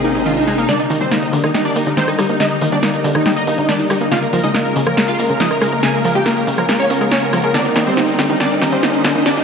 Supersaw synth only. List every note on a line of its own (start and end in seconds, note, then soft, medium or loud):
0.04 0.13 D#4 medium
0.15 0.24 D#4 medium
0.26 0.35 F4 medium
0.37 0.45 D#4 medium
0.47 0.56 D#4 medium
0.58 0.67 D#4 medium
0.69 0.78 D4 medium
0.69 0.78 D5 loud
0.79 0.88 D#4 medium
0.90 0.99 D#4 medium
1.01 1.10 C4 medium
1.01 1.10 C5 medium
1.12 1.21 D#4 medium
1.22 1.31 D#4 medium
1.44 1.53 D#4 medium
1.55 1.63 D#4 medium
1.65 1.74 D4 medium
1.65 1.74 D5 medium
1.76 1.85 D#4 medium
1.87 1.96 D#4 medium
1.97 2.06 C4 medium
1.97 2.06 C5 medium
2.08 2.17 D#4 medium
2.19 2.28 D#4 medium
2.29 2.38 D#4 medium
2.40 2.49 D#4 medium
2.40 2.49 D#5 loud
2.51 2.60 D#4 medium
2.62 2.70 D#4 medium
2.72 2.81 D4 medium
2.72 2.81 D5 medium
2.83 2.92 D#4 medium
2.94 3.03 D#4 medium
3.15 3.24 D#4 medium
3.26 3.35 D#4 medium
3.36 3.45 D#4 medium
3.36 3.45 D#5 loud
3.47 3.56 D#4 medium
3.58 3.67 D#4 medium
3.69 3.78 D4 medium
3.69 3.78 D5 medium
3.79 3.88 D#4 medium
3.90 3.99 D#4 medium
4.01 4.10 D#4 medium
4.12 4.20 F4 medium
4.12 4.20 F5 loud
4.22 4.31 A#4 medium
4.33 4.42 A#4 medium
4.44 4.53 D#4 medium
4.44 4.53 D#5 medium
4.54 4.63 A#4 medium
4.65 4.74 A#4 medium
4.87 4.95 A#4 medium
4.97 5.06 A#4 medium
5.08 5.17 F4 medium
5.08 5.17 F5 medium
5.19 5.28 A#4 medium
5.29 5.38 A#4 medium
5.40 5.49 D#4 medium
5.40 5.49 D#5 medium
5.51 5.60 A#4 medium
5.62 5.71 A#4 medium
5.72 5.81 A#4 medium
5.83 5.92 G#4 medium
5.83 5.92 G#5 loud
5.94 6.03 A#4 medium
6.04 6.13 A#4 medium
6.15 6.24 G4 medium
6.15 6.24 G5 loud
6.26 6.35 A#4 medium
6.37 6.45 A#4 medium
6.58 6.67 A#4 medium
6.69 6.78 A#4 medium
6.80 6.88 C#4 medium
6.80 6.88 C#5 medium
6.90 6.99 A#4 medium
7.01 7.10 A#4 medium
7.12 7.21 C#4 medium
7.12 7.21 C#5 loud
7.22 7.31 A#4 medium
7.33 7.42 A#4 medium
7.44 7.53 A#4 medium
7.54 7.63 D4 medium
7.54 7.63 D5 medium
7.65 7.74 D#4 medium
7.76 7.85 D#4 medium
7.87 7.96 C4 medium
7.87 7.95 C5 medium
7.97 8.06 D#4 medium
8.08 8.17 D#4 medium
8.30 8.38 D#4 medium
8.40 8.49 D4 medium
8.40 8.49 D5 medium
8.51 8.60 D#4 medium
8.62 8.71 D#4 medium
8.73 8.81 C4 medium
8.73 8.81 C5 medium
8.83 8.92 D#4 medium
8.94 9.03 D#4 medium
9.15 9.24 D#4 medium
9.26 9.35 D4 medium
9.26 9.35 D5 medium
9.37 9.44 D#4 medium